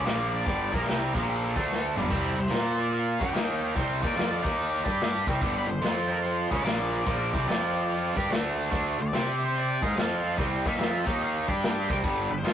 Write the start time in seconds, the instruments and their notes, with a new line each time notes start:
Already playing: lead electric guitar D5
0.04 picked electric bass A#1, overdriven electric guitar A#2 F3 A#3, snare, open hi-hat
0.34 lead electric guitar D5
0.45 picked electric bass G1, overdriven electric guitar G2 D3 G3, kick, open hi-hat
0.72 picked electric bass A#1, overdriven electric guitar A#2 F3 A#3, lead electric guitar A#4, kick
0.83 snare
0.87 picked electric bass C2, overdriven electric guitar C3 G3 C4, snare, open hi-hat
1.13 picked electric bass A#1, overdriven electric guitar A#2 F3 A#3, kick
1.29 lead electric guitar A4, open hi-hat
1.56 picked electric bass D2, overdriven electric guitar D3 A3 D4, kick
1.72 snare
1.96 picked electric bass G1, overdriven electric guitar G2 D3 G3, mid tom
2.03 floor tom
2.10 picked electric bass C2, overdriven electric guitar C3 G3 C4, kick, open hi-hat, crash
2.37 picked electric bass C2, overdriven electric guitar C3 G3, lead electric guitar C5
2.47 overdriven electric guitar A#3 F4 A#4, snare
2.52 picked electric bass A#2, snare, open hi-hat
2.80 lead electric guitar D5
2.93 lead electric guitar F5, open hi-hat
3.20 picked electric bass F#2, overdriven electric guitar F#3 C#4 F#4, lead electric guitar G5, kick
3.33 picked electric bass D#2, overdriven electric guitar D#3 A#3 D#4, snare, open hi-hat
3.75 picked electric bass C2, overdriven electric guitar C3 G3 C4, lead electric guitar C5, kick, open hi-hat
4.02 picked electric bass D#2, overdriven electric guitar D#3 A#3 D#4, lead electric guitar D5, kick
4.13 picked electric bass F2, overdriven electric guitar F3 C4 F4, snare
4.18 snare, open hi-hat
4.43 picked electric bass D#2, overdriven electric guitar D#3 A#3 D#4, kick
4.59 open hi-hat
4.85 picked electric bass G2, overdriven electric guitar G3 D4 G4, kick
5.00 snare, open hi-hat
5.27 picked electric bass C2, overdriven electric guitar C3 G3 C4, kick
5.41 picked electric bass G1, overdriven electric guitar G2 D3 G3, kick, open hi-hat
5.58 lead electric guitar B4
5.67 picked electric bass G1, overdriven electric guitar G2 D3, lead electric guitar C5
5.81 picked electric bass F2, overdriven electric guitar F3 C4 F4, snare, open hi-hat
6.12 lead electric guitar A#4
6.24 lead electric guitar C5, open hi-hat
6.51 picked electric bass C#2, overdriven electric guitar C#3 G#3 C#4, lead electric guitar D5, kick
6.63 picked electric bass A#1, overdriven electric guitar A#2 F3 A#3, open hi-hat
6.67 snare
7.05 picked electric bass A#1, overdriven electric guitar A#2 F3 A#3, kick, open hi-hat
7.33 picked electric bass C2, overdriven electric guitar C3 G3 C4, kick
7.47 picked electric bass F2, overdriven electric guitar F3 C4 F4, snare, open hi-hat
7.89 open hi-hat
8.16 picked electric bass G2, overdriven electric guitar G3 D4 G4, kick
8.30 picked electric bass D2, overdriven electric guitar D3 A3 D4, snare, open hi-hat
8.71 picked electric bass D2, overdriven electric guitar D3 A3 D4, kick, open hi-hat
8.99 picked electric bass D2, overdriven electric guitar D3 A3, lead electric guitar D5
9.13 picked electric bass C3, overdriven electric guitar C4 G4 C5, snare, open hi-hat
9.44 lead electric guitar C5
9.55 lead electric guitar D5, open hi-hat
9.82 picked electric bass G#2, overdriven electric guitar G#3 D#4 G#4, lead electric guitar F5, kick
9.96 picked electric bass F2, overdriven electric guitar F3 C4 F4, snare, open hi-hat
10.26 lead electric guitar F5
10.37 picked electric bass C2, overdriven electric guitar C3 G3 C4, kick, open hi-hat
10.66 picked electric bass D#2, overdriven electric guitar D#3 A#3 D#4, lead electric guitar E5, kick
10.75 picked electric bass F2, snare
10.79 overdriven electric guitar F3 C4 F4, snare, open hi-hat
11.06 picked electric bass D#2, overdriven electric guitar D#3 A#3 D#4, lead electric guitar D#5, kick
11.21 lead electric guitar F5, open hi-hat
11.48 picked electric bass G2, overdriven electric guitar G3 D4 G4, lead electric guitar G5, kick
11.63 snare, open hi-hat
11.89 picked electric bass C2, overdriven electric guitar C3 G3 C4, lead electric guitar G5, kick
12.03 picked electric bass G1, overdriven electric guitar G2 D3 G3, kick, open hi-hat
12.30 picked electric bass G1, overdriven electric guitar G2 D3, lead electric guitar C5
12.43 picked electric bass F2, overdriven electric guitar F3 C4 F4, snare, open hi-hat